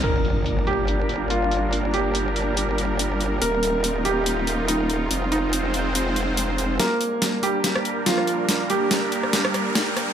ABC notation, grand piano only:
X:1
M:4/4
L:1/8
Q:"Swing 16ths" 1/4=142
K:Gphr
V:1 name="Grand piano"
B3 G3 F2- | F G6- G | B3 G3 E2- | E E6- E |
[B,B]3 [G,G]3 [F,F]2- | [F,F] [G,G]6- [G,G] |]